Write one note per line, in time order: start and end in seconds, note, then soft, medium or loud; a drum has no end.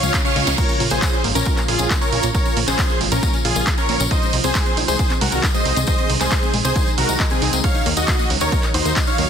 0.00 0.10 C#2 medium
0.00 0.55 G#2 medium
0.00 4.07 C#3 medium
0.00 4.07 F3 medium
0.00 0.06 G#3 medium
0.00 4.07 C#4 medium
0.00 4.07 F4 medium
0.00 0.17 C#5 medium
0.00 0.17 F5 medium
0.00 closed hi-hat medium
0.00 tambourine medium
0.00 reverse cymbal medium
0.14 kick loud
0.14 clap loud
0.14 closed hi-hat medium
0.14 tambourine medium
0.25 0.28 C#4 medium
0.25 0.50 C#5 medium
0.25 0.50 F5 loud
0.25 closed hi-hat soft
0.25 tambourine soft
0.36 0.43 C#2 medium
0.36 0.39 G#3 loud
0.36 snare medium
0.36 open hi-hat medium
0.47 0.54 C#2 medium
0.47 0.54 C#4 medium
0.47 snare medium
0.47 closed hi-hat medium
0.47 tambourine medium
0.58 4.08 A#2 medium
0.58 0.61 A#3 loud
0.58 0.83 A#4 medium
0.58 0.83 C#5 loud
0.58 kick loud
0.58 closed hi-hat medium
0.58 crash medium
0.58 tambourine medium
0.69 0.76 C#4 medium
0.69 closed hi-hat soft
0.69 tambourine soft
0.80 0.87 A#1 medium
0.80 0.83 F4 medium
0.80 open hi-hat loud
0.91 0.99 A#1 medium
0.91 0.94 A#3 medium
0.91 1.24 G#4 medium
0.91 1.24 C5 loud
0.91 closed hi-hat medium
0.91 tambourine medium
1.02 kick loud
1.02 clap loud
1.02 closed hi-hat medium
1.02 tambourine medium
1.13 1.16 C#4 medium
1.13 closed hi-hat soft
1.13 tambourine soft
1.24 1.32 G#1 medium
1.24 1.27 A#3 loud
1.24 open hi-hat loud
1.35 1.43 A#1 medium
1.35 1.42 C#4 medium
1.35 1.60 C#4 medium
1.35 1.60 A#4 loud
1.35 closed hi-hat medium
1.35 tambourine medium
1.45 1.49 F4 medium
1.45 kick loud
1.45 closed hi-hat medium
1.45 tambourine medium
1.57 1.60 A#3 medium
1.57 clap soft
1.57 closed hi-hat soft
1.57 tambourine soft
1.68 1.76 A#1 loud
1.68 1.93 F4 medium
1.68 1.93 G#4 medium
1.68 open hi-hat loud
1.79 1.87 A#1 medium
1.79 1.82 C#4 medium
1.79 closed hi-hat medium
1.79 tambourine medium
1.90 1.93 A#3 loud
1.90 kick loud
1.90 clap loud
1.90 closed hi-hat medium
1.90 tambourine medium
2.01 2.08 C#4 medium
2.01 2.26 A#4 medium
2.01 2.26 C#5 loud
2.01 closed hi-hat soft
2.01 tambourine soft
2.13 2.20 A#1 medium
2.13 2.15 F4 medium
2.13 open hi-hat medium
2.23 2.31 A#1 medium
2.23 2.26 A#3 medium
2.23 closed hi-hat medium
2.23 tambourine medium
2.34 2.59 A#4 medium
2.34 2.59 C#5 loud
2.34 kick loud
2.34 closed hi-hat medium
2.34 tambourine medium
2.45 2.48 C#4 medium
2.45 closed hi-hat soft
2.45 tambourine soft
2.57 2.64 A#1 medium
2.57 2.59 A#3 loud
2.57 open hi-hat loud
2.67 2.75 A#1 medium
2.67 2.75 C#4 medium
2.67 3.00 G#4 medium
2.67 3.00 C5 medium
2.67 clap soft
2.67 closed hi-hat medium
2.67 tambourine medium
2.79 2.81 F4 medium
2.79 kick loud
2.79 clap loud
2.79 closed hi-hat medium
2.79 tambourine medium
2.90 2.93 A#3 medium
2.90 closed hi-hat soft
2.90 tambourine soft
3.01 3.08 G#1 loud
3.01 open hi-hat loud
3.12 3.19 A#1 medium
3.12 3.36 C#4 medium
3.12 3.15 C#4 medium
3.12 3.36 A#4 loud
3.12 closed hi-hat medium
3.12 tambourine medium
3.23 3.26 A#3 loud
3.23 kick loud
3.23 closed hi-hat medium
3.23 tambourine medium
3.33 3.41 C#4 medium
3.33 closed hi-hat soft
3.33 tambourine soft
3.45 3.52 A#1 loud
3.45 3.69 F4 medium
3.45 3.48 F4 medium
3.45 3.69 G#4 loud
3.45 open hi-hat loud
3.56 3.63 A#1 medium
3.56 3.59 A#3 medium
3.56 closed hi-hat soft
3.56 tambourine medium
3.67 kick loud
3.67 clap loud
3.67 closed hi-hat medium
3.67 tambourine medium
3.78 3.81 C#4 medium
3.78 4.02 A#4 medium
3.78 4.02 C#5 loud
3.78 closed hi-hat soft
3.78 tambourine soft
3.89 3.96 A#1 medium
3.89 3.92 A#3 loud
3.89 open hi-hat medium
4.00 4.07 A#1 medium
4.00 4.07 C#4 medium
4.00 closed hi-hat medium
4.00 tambourine medium
4.11 7.60 C3 medium
4.11 9.30 D#3 medium
4.11 7.60 G#3 medium
4.11 4.14 D#4 medium
4.11 9.30 D#4 medium
4.11 5.86 G#4 medium
4.11 4.36 C5 medium
4.11 4.36 D#5 loud
4.11 kick loud
4.11 closed hi-hat medium
4.11 tambourine medium
4.22 4.25 G#3 medium
4.22 closed hi-hat soft
4.22 tambourine soft
4.33 4.40 C2 loud
4.33 open hi-hat loud
4.44 4.51 C2 medium
4.44 4.47 C4 medium
4.44 4.77 G#4 medium
4.44 4.77 C5 loud
4.44 closed hi-hat soft
4.44 tambourine medium
4.55 4.58 G#3 medium
4.55 kick loud
4.55 clap loud
4.55 closed hi-hat medium
4.55 tambourine medium
4.66 4.73 C4 medium
4.66 closed hi-hat soft
4.66 tambourine soft
4.77 4.84 A#1 medium
4.77 4.80 D#4 medium
4.77 open hi-hat loud
4.88 4.96 C2 medium
4.88 4.91 G#3 medium
4.88 5.13 G#4 medium
4.88 5.13 C5 loud
4.88 closed hi-hat medium
4.88 tambourine medium
4.99 kick loud
4.99 closed hi-hat soft
4.99 tambourine medium
5.10 5.13 C4 medium
5.10 clap soft
5.10 closed hi-hat soft
5.10 tambourine soft
5.21 5.29 C2 medium
5.21 5.24 G#3 loud
5.21 5.46 F#4 medium
5.21 5.46 A#4 medium
5.21 open hi-hat loud
5.32 5.40 C2 medium
5.32 5.39 C4 medium
5.32 closed hi-hat soft
5.32 tambourine medium
5.43 5.46 D#4 medium
5.43 kick loud
5.43 clap loud
5.43 closed hi-hat medium
5.43 tambourine medium
5.54 5.57 G#3 medium
5.54 5.79 C5 medium
5.54 5.79 D#5 loud
5.54 closed hi-hat soft
5.54 tambourine soft
5.65 5.73 C2 medium
5.65 open hi-hat loud
5.76 5.84 C2 medium
5.76 5.79 C4 medium
5.76 closed hi-hat medium
5.76 tambourine medium
5.87 5.90 G#3 loud
5.87 7.62 A#4 medium
5.87 6.12 C5 medium
5.87 6.12 D#5 loud
5.87 kick loud
5.87 closed hi-hat medium
5.87 tambourine medium
5.98 6.05 C4 medium
5.98 closed hi-hat soft
5.98 tambourine soft
6.10 6.17 C2 medium
6.10 6.12 D#4 medium
6.10 open hi-hat loud
6.21 6.28 C2 medium
6.21 6.23 G#3 medium
6.21 6.53 G#4 medium
6.21 6.53 C5 loud
6.21 clap soft
6.21 closed hi-hat medium
6.21 tambourine medium
6.31 kick loud
6.31 clap loud
6.31 closed hi-hat medium
6.31 tambourine medium
6.43 6.45 C4 medium
6.43 closed hi-hat soft
6.43 tambourine soft
6.54 6.61 A#1 medium
6.54 6.56 G#3 loud
6.54 open hi-hat loud
6.65 6.72 C2 medium
6.65 6.72 C4 medium
6.65 6.89 G#4 medium
6.65 6.89 C5 loud
6.65 closed hi-hat soft
6.65 tambourine medium
6.76 6.79 D#4 medium
6.76 kick loud
6.76 closed hi-hat medium
6.76 tambourine medium
6.87 6.90 G#3 medium
6.87 closed hi-hat soft
6.87 tambourine soft
6.98 7.05 C2 loud
6.98 7.22 F#4 medium
6.98 7.22 A#4 loud
6.98 open hi-hat loud
7.09 7.16 C2 medium
7.09 7.16 D#4 medium
7.09 closed hi-hat medium
7.09 tambourine medium
7.20 7.27 D#5 medium
7.20 kick loud
7.20 clap loud
7.20 closed hi-hat medium
7.30 7.55 C4 medium
7.30 7.55 G#4 loud
7.30 7.38 G#5 medium
7.30 closed hi-hat soft
7.30 tambourine soft
7.42 7.49 C2 medium
7.42 7.47 D#4 loud
7.42 open hi-hat loud
7.53 7.60 C2 medium
7.53 7.60 G#3 medium
7.53 closed hi-hat medium
7.53 tambourine medium
7.64 9.30 A#2 medium
7.64 9.30 F#3 medium
7.64 9.30 F#4 medium
7.64 7.89 C#5 medium
7.64 7.89 F5 loud
7.64 kick loud
7.64 closed hi-hat medium
7.75 7.78 D#4 medium
7.75 closed hi-hat soft
7.75 tambourine soft
7.86 7.93 D#2 medium
7.86 7.89 A#3 loud
7.86 open hi-hat loud
7.97 8.04 D#2 medium
7.97 8.04 D#4 medium
7.97 8.30 F#4 medium
7.97 8.30 D#5 loud
7.97 closed hi-hat medium
7.97 tambourine medium
8.08 8.11 F#4 medium
8.08 kick loud
8.08 clap loud
8.08 closed hi-hat medium
8.08 tambourine medium
8.19 8.22 A#3 medium
8.19 closed hi-hat soft
8.19 tambourine soft
8.30 8.37 C#2 medium
8.30 open hi-hat loud
8.41 8.48 D#2 medium
8.41 8.44 D#4 medium
8.41 8.66 A#4 medium
8.41 8.66 C#5 loud
8.41 closed hi-hat medium
8.41 tambourine medium
8.52 8.55 A#3 loud
8.52 kick loud
8.52 closed hi-hat medium
8.52 tambourine medium
8.63 8.70 D#4 medium
8.63 clap soft
8.63 closed hi-hat soft
8.63 tambourine soft
8.74 8.82 D#2 medium
8.74 8.99 D#4 medium
8.74 8.77 F#4 medium
8.74 8.99 C5 medium
8.74 open hi-hat loud
8.85 8.93 D#2 medium
8.85 8.88 A#3 medium
8.85 closed hi-hat soft
8.85 tambourine medium
8.96 kick loud
8.96 clap loud
8.96 closed hi-hat medium
8.96 tambourine medium
9.07 9.10 D#4 medium
9.07 9.30 C#5 medium
9.07 9.30 F5 loud
9.07 closed hi-hat soft
9.07 tambourine soft
9.18 9.26 D#2 medium
9.18 9.21 A#3 loud
9.18 open hi-hat medium